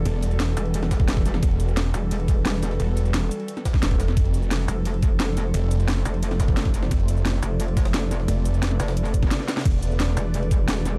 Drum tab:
CC |--------------------------------|--------------------------------|--------------------------------|--------------------------------|
RD |x---x-x-x---x-x-x---x---x---x---|x-x-x---x---x---x-x-x---x---x---|x---x-x-x---x-x-x---x---x---x---|x-x-x---x---x---x-x-x---x---x---|
HH |x---x---x---x---x---x---x---x---|x---x---x---x---x---x---x---x---|x---x---x---x---x---x---x---x---|x---x---x---x---x---x---x---x---|
SH |----x-x-----x-------x-------x---|----x-x-----x-------x-------x---|----x-x-----x-----x-x-------x---|----x-x-----x-------x-------x---|
SD |--------o---------o-o-o-o-o---o-|--------o---------------o---o-o-|--------o---------o-o-o-o---o-o-|--------o---------------o---o---|
BD |--------------------o-o---o-----|o-------------------o-----------|--------------------o-o---o-----|o-------------------o-----------|

CC |--------------------------------|--------------------------------|--------------------------------|x-------------------------------|
RD |x---x-x-x---x-x-x---x---x---x---|x-x-x---x---x---x-x-x-x-x---x---|x---x-x-x---x-x-x-x---x-x-x-x-xx|x-x-x---x---x---x-x-x---x---x---|
HH |x---x---x---x---x---x---x---x---|x---x---x---x---x---x---x---x---|x---x---x---x---x---x---x---x---|x---x---x---x---x---x---x---x---|
SH |----x-x-----x-------x-------x---|----x-x-----x-------x-------x---|----x-x-----x-----x-x-------x---|----x-x-----x-------x-------x---|
SD |--------o---------o-o-o-o-o---o-|--------o-----------o-o-o---o-o-|--------o-o-o-o-------o-o-o-o-oo|--------o---------------o---o---|
BD |--------------------o-o---o-----|o-------------------o-----------|--------------------o-o---------|o-------------------o-----------|